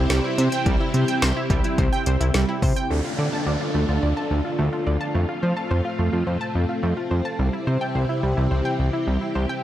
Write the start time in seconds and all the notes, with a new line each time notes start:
Already playing: C3 C4 E4 G4
0.10 C2 G3, snare, closed hi-hat
0.24 E4
0.38 C3 C5, closed hi-hat
0.52 G5, closed hi-hat
0.66 C2 G3, kick, closed hi-hat
0.80 E4
0.94 C3, closed hi-hat
1.08 G5, closed hi-hat
1.22 C2 C5, snare, closed hi-hat
1.36 E4
1.50 C2 G3, kick, closed hi-hat
1.64 E4, closed hi-hat
1.78 C2 C5, kick, closed hi-hat
1.93 G5
2.06 C2 C5, closed hi-hat
2.20 C2 E4, closed hi-hat
2.34 C2 G3, snare, closed hi-hat
2.49 E4
2.62 C3 C5, kick, open hi-hat
2.76 G5, closed hi-hat
2.90 D2 D3 A3 D4 F4 A4, downlifter
3.05 F4
3.19 D3 D5
3.33 A5
3.46 D2 D5
3.61 F4
3.75 D2 A3
3.89 D2 F4
4.03 D2 D5
4.17 A5
4.31 D2
4.45 F4
4.59 D2 A3
4.73 F4
4.87 D2 D5
5.01 A5
5.15 F2 A3 C4
5.29 F4
5.43 F3 C5
5.57 A5
5.71 F2 C5
5.85 F4
5.99 F2 A3
6.13 F2 F4
6.27 F2 C5
6.41 A5
6.55 F2
6.69 F4
6.83 F2 A3
6.97 F4
7.11 F2 C5
7.25 A5
7.39 C2 C3 G3 E4 G4
7.53 E4
7.67 C3 C5
7.81 G5
7.95 C2 C5
8.09 E4
8.23 C2 G3
8.37 C2 E4
8.51 C2 C5
8.65 G5
8.79 C2
8.93 E4
9.07 C2 G3
9.21 E4
9.35 C2 C5
9.49 G5